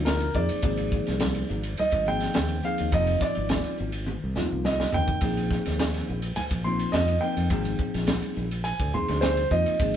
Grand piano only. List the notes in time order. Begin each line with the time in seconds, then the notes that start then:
0.05 A#4
0.35 D5
1.80 D#5
2.08 G5
2.65 F5
2.94 D#5
3.22 D5
4.66 D#5
4.94 G5
6.36 G#5
6.64 C6
6.92 D#5
7.21 G5
8.64 G#5
8.94 C6
9.21 C5
9.51 D#5